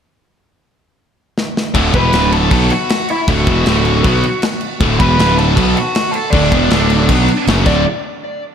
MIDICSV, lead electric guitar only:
0, 0, Header, 1, 2, 480
1, 0, Start_track
1, 0, Key_signature, 2, "major"
1, 0, Tempo, 382409
1, 274, Time_signature, 4, 2, 24, 8
1, 10731, End_track
2, 0, Start_track
2, 0, Title_t, "Lead electric guitar"
2, 0, Program_c, 0, 29
2, 2443, Note_on_c, 0, 71, 80
2, 2482, Note_on_c, 0, 83, 114
2, 2890, Note_off_c, 0, 71, 0
2, 2922, Note_on_c, 0, 69, 74
2, 2923, Note_off_c, 0, 83, 0
2, 2928, Note_on_c, 0, 81, 83
2, 3370, Note_off_c, 0, 69, 0
2, 3410, Note_on_c, 0, 66, 72
2, 3419, Note_off_c, 0, 81, 0
2, 3419, Note_on_c, 0, 78, 100
2, 3854, Note_off_c, 0, 66, 0
2, 3895, Note_on_c, 0, 64, 68
2, 3898, Note_off_c, 0, 78, 0
2, 3903, Note_on_c, 0, 76, 82
2, 4113, Note_off_c, 0, 64, 0
2, 4142, Note_off_c, 0, 76, 0
2, 4142, Note_on_c, 0, 78, 81
2, 4151, Note_on_c, 0, 66, 67
2, 5526, Note_off_c, 0, 66, 0
2, 5572, Note_off_c, 0, 78, 0
2, 6275, Note_on_c, 0, 83, 113
2, 6293, Note_on_c, 0, 71, 87
2, 6733, Note_off_c, 0, 71, 0
2, 6751, Note_off_c, 0, 83, 0
2, 6756, Note_on_c, 0, 81, 100
2, 6784, Note_on_c, 0, 69, 76
2, 7218, Note_off_c, 0, 69, 0
2, 7232, Note_on_c, 0, 78, 104
2, 7251, Note_off_c, 0, 81, 0
2, 7264, Note_on_c, 0, 66, 82
2, 7675, Note_on_c, 0, 81, 94
2, 7698, Note_off_c, 0, 66, 0
2, 7724, Note_on_c, 0, 69, 74
2, 7729, Note_off_c, 0, 78, 0
2, 7910, Note_on_c, 0, 74, 81
2, 7943, Note_off_c, 0, 69, 0
2, 7944, Note_off_c, 0, 81, 0
2, 7960, Note_on_c, 0, 62, 65
2, 9320, Note_off_c, 0, 74, 0
2, 9346, Note_off_c, 0, 62, 0
2, 9617, Note_on_c, 0, 74, 84
2, 9848, Note_off_c, 0, 74, 0
2, 10731, End_track
0, 0, End_of_file